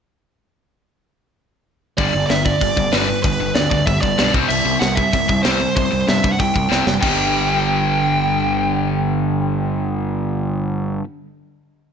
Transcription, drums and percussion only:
1.98 kick, open hi-hat
2.30 snare, open hi-hat
2.46 kick
2.61 kick, open hi-hat
2.77 kick
2.93 snare, open hi-hat
3.24 kick, open hi-hat
3.55 snare, open hi-hat
3.71 kick
3.87 kick, open hi-hat
4.03 kick
4.19 snare, open hi-hat
4.34 kick
4.50 crash
4.82 snare, open hi-hat
4.97 kick
5.13 kick, open hi-hat
5.29 kick
5.45 snare, open hi-hat
5.76 kick, open hi-hat
6.08 snare, open hi-hat
6.24 kick
6.40 kick, open hi-hat
6.56 kick
6.72 snare
6.87 snare
7.03 kick, crash

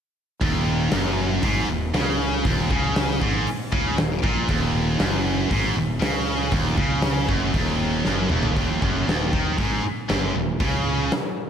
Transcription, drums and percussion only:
0.41 kick, open hi-hat
0.92 snare, open hi-hat
1.43 kick, open hi-hat
1.94 snare, open hi-hat
2.45 kick, open hi-hat
2.71 kick
2.96 snare, open hi-hat
3.22 kick
3.47 open hi-hat
3.73 kick
3.98 snare, open hi-hat
4.24 kick
4.48 kick, open hi-hat
5.00 snare, open hi-hat
5.51 kick, open hi-hat
6.02 snare, open hi-hat
6.51 kick, open hi-hat
6.78 kick
7.02 snare, open hi-hat
7.29 kick
7.54 kick, open hi-hat
8.05 snare
8.30 mid tom
8.43 floor tom
8.57 kick, open hi-hat
8.82 kick
9.09 snare, open hi-hat
9.33 kick
9.58 kick, open hi-hat
10.10 snare, open hi-hat
10.60 kick, open hi-hat
11.12 snare, open hi-hat

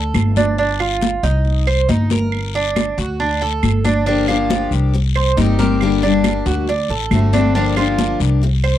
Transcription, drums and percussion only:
0.14 high conga, short guiro, claves
0.36 high conga, short guiro
0.58 high conga, long guiro
0.80 high conga, claves
1.01 high conga, short guiro
1.23 high conga, short guiro
1.45 high conga, long guiro
1.67 high conga, claves
1.89 high conga, short guiro
2.10 high conga, short guiro
2.32 high conga, long guiro, claves
2.55 high conga
2.76 high conga, short guiro, claves
2.98 high conga, short guiro
3.20 high conga, long guiro
3.42 high conga
3.63 high conga, short guiro, claves
3.84 high conga, short guiro
4.06 high conga, long guiro
4.28 high conga, claves
4.50 high conga, short guiro
4.72 high conga, short guiro
4.94 high conga, long guiro
5.15 high conga, claves
5.37 high conga, short guiro
5.59 high conga, short guiro
5.81 high conga, long guiro, claves
6.03 high conga
6.24 high conga, short guiro, claves
6.46 high conga, short guiro
6.68 high conga, long guiro
6.90 high conga
7.11 high conga, short guiro, claves
7.33 high conga, short guiro
7.55 high conga, long guiro
7.77 high conga, claves
7.98 high conga, short guiro
8.20 high conga, short guiro
8.42 high conga, long guiro
8.64 high conga, claves

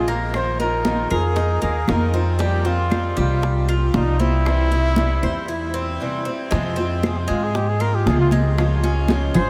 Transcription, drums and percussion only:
0.34 high bongo, high conga, claves
0.60 high conga
0.85 high bongo, high conga
1.10 high bongo, high conga, claves
1.36 high bongo, high conga
1.62 high bongo, high conga
1.88 high bongo, low bongo, high conga, claves
2.13 high bongo, high conga
2.40 high bongo, high conga
2.66 high conga
2.91 high bongo, high conga, claves
3.17 high conga
3.43 high bongo, high conga
3.68 high conga, claves
3.94 high bongo, low bongo, high conga
4.20 high conga
4.46 high bongo, high conga, claves
4.71 high conga
4.96 high bongo, high conga
5.23 high bongo, high conga, claves
6.51 high bongo, high conga
6.78 high conga
7.03 high bongo, high conga, claves
7.29 high conga
7.55 high bongo, high conga
7.81 high conga, claves
8.07 high bongo, low bongo, high conga
8.31 high conga
8.58 high bongo, high conga, claves
8.83 high conga
9.08 high bongo, high conga
9.35 high bongo, high conga, low conga, claves

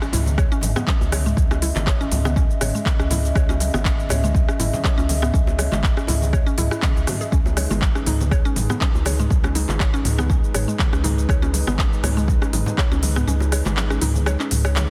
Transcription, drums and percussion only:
0.02 cross-stick, shaker
0.13 mid tom, open hi-hat, high bongo, low bongo, muted conga, low conga, shaker
0.26 high conga, shaker
0.38 kick, cross-stick, low bongo, muted conga, shaker
0.52 shaker
0.61 mid tom, open hi-hat, low bongo, muted conga, high conga, low conga, shaker
0.76 cross-stick, high conga, low conga, shaker
0.87 kick, clap, low bongo, shaker
1.01 high bongo, muted conga, shaker
1.12 cross-stick, open hi-hat, low bongo, high conga, shaker
1.26 mid tom, muted conga, shaker
1.37 kick, low bongo, shaker
1.51 cross-stick, high bongo, muted conga, shaker
1.62 open hi-hat, low bongo, shaker
1.76 clap, high bongo, high conga, shaker
1.87 kick, cross-stick, clap, low bongo, shaker
2.01 shaker
2.12 mid tom, open hi-hat, high bongo, low bongo, muted conga, low conga, shaker
2.25 cross-stick, high conga, shaker
2.36 kick, low bongo, muted conga, shaker
2.51 shaker
2.61 cross-stick, mid tom, open hi-hat, low bongo, muted conga, high conga, shaker
2.76 shaker
2.86 kick, clap, low bongo, high conga, shaker
2.99 cross-stick, muted conga, shaker
3.10 mid tom, open hi-hat, low bongo, high conga, low conga, shaker
3.25 muted conga, shaker
3.35 kick, cross-stick, low bongo, shaker
3.49 high bongo, muted conga, shaker
3.60 open hi-hat, low bongo, shaker
3.74 cross-stick, high bongo, high conga, shaker
3.85 kick, clap, low bongo, muted conga, shaker
3.99 shaker
4.09 cross-stick, mid tom, open hi-hat, high bongo, low bongo, muted conga, low conga, shaker
4.24 high conga, shaker
4.35 kick, low bongo, muted conga, shaker
4.49 cross-stick, shaker
4.59 mid tom, open hi-hat, low bongo, muted conga, high conga, low conga, shaker
4.73 high conga, low conga, shaker
4.84 kick, cross-stick, clap, low bongo, shaker
4.99 high bongo, muted conga, shaker
5.09 open hi-hat, low bongo, high conga, shaker
5.23 cross-stick, mid tom, muted conga, shaker
5.34 kick, low bongo, shaker
5.47 high bongo, muted conga, shaker
5.59 cross-stick, open hi-hat, low bongo, shaker
5.72 clap, high bongo, high conga, shaker
5.83 kick, clap, low bongo, muted conga, shaker
5.97 cross-stick, shaker
6.07 mid tom, open hi-hat, high bongo, low bongo, muted conga, low conga, shaker
6.22 high conga, shaker
6.33 kick, cross-stick, low bongo, shaker
6.47 shaker
6.58 mid tom, open hi-hat, low bongo, muted conga, high conga, shaker
6.71 cross-stick, shaker
6.82 kick, clap, low bongo, high conga, shaker
6.97 muted conga, shaker
7.07 cross-stick, mid tom, open hi-hat, low bongo, high conga, low conga, shaker
7.21 muted conga, shaker
7.32 kick, low bongo, shaker
7.46 high bongo, muted conga, shaker
7.57 cross-stick, open hi-hat, low bongo, shaker
7.70 high bongo, high conga, shaker
7.81 kick, clap, low bongo, muted conga, shaker
7.95 cross-stick, shaker
8.06 mid tom, open hi-hat, high bongo, low bongo, muted conga, low conga, shaker
8.21 high conga, shaker
8.31 kick, cross-stick, low bongo, shaker
8.46 shaker
8.56 mid tom, open hi-hat, low bongo, muted conga, high conga, low conga, shaker
8.69 cross-stick, high conga, low conga, shaker
8.81 kick, clap, low bongo, shaker
8.94 high bongo, muted conga, shaker
9.05 cross-stick, open hi-hat, low bongo, high conga, shaker
9.19 mid tom, muted conga, shaker
9.30 kick, low bongo, shaker
9.44 cross-stick, high bongo, muted conga, shaker
9.55 open hi-hat, low bongo, shaker
9.69 clap, high bongo, high conga, shaker
9.80 kick, cross-stick, clap, low bongo, shaker
9.95 shaker
10.05 mid tom, open hi-hat, high bongo, low bongo, muted conga, low conga, shaker
10.19 cross-stick, high conga, shaker
10.30 kick, low bongo, muted conga, shaker
10.44 shaker
10.54 cross-stick, mid tom, open hi-hat, low bongo, muted conga, high conga, shaker
10.69 shaker
10.79 kick, clap, low bongo, high conga, shaker
10.93 cross-stick, muted conga, shaker
11.04 mid tom, open hi-hat, low bongo, high conga, low conga, shaker
11.18 muted conga, shaker
11.29 kick, cross-stick, low bongo, shaker
11.43 high bongo, muted conga, shaker
11.54 open hi-hat, low bongo, shaker
11.68 cross-stick, high bongo, high conga, shaker
11.78 kick, clap, low bongo, muted conga, shaker
11.93 shaker
12.03 cross-stick, mid tom, open hi-hat, high bongo, low bongo, muted conga, low conga, shaker
12.17 high conga, shaker
12.28 kick, low bongo, muted conga, shaker
12.42 cross-stick, shaker
12.53 mid tom, open hi-hat, low bongo, muted conga, high conga, low conga, shaker
12.66 high conga, low conga, shaker
12.78 kick, cross-stick, clap, low bongo, shaker
12.92 high bongo, muted conga, shaker
13.02 open hi-hat, low bongo, high conga, shaker
13.16 cross-stick, mid tom, muted conga, shaker
13.28 low bongo, shaker
13.40 high bongo, muted conga, shaker
13.52 cross-stick, open hi-hat, low bongo, shaker
13.65 clap, high bongo, high conga, shaker
13.77 clap, low bongo, muted conga, shaker
13.90 cross-stick, shaker
14.02 mid tom, open hi-hat, high bongo, low bongo, muted conga, low conga, shaker
14.15 high conga, shaker
14.26 cross-stick, low bongo, muted conga, shaker
14.40 clap, shaker
14.51 mid tom, open hi-hat, low bongo, muted conga, high conga, shaker
14.65 cross-stick, shaker
14.76 clap, low bongo, high conga, shaker

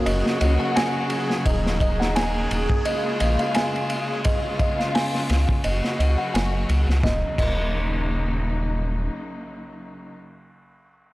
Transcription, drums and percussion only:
0.06 ride
0.26 snare
0.41 ride
0.77 snare, ride
1.10 ride
1.30 snare
1.46 kick, ride
1.66 snare
1.80 kick, ride
2.01 snare
2.16 snare, ride
2.51 ride
2.70 kick
2.85 ride
3.20 ride
3.39 ride
3.55 snare, ride
3.76 ride
3.90 ride
4.25 kick, ride
4.59 kick, ride
4.80 snare
4.95 snare, open hi-hat
5.15 snare
5.29 snare, ride
5.49 kick
5.64 ride
5.84 snare
6.00 ride
6.35 snare, ride
6.69 ride
6.90 snare
7.03 kick, snare
7.38 kick, crash

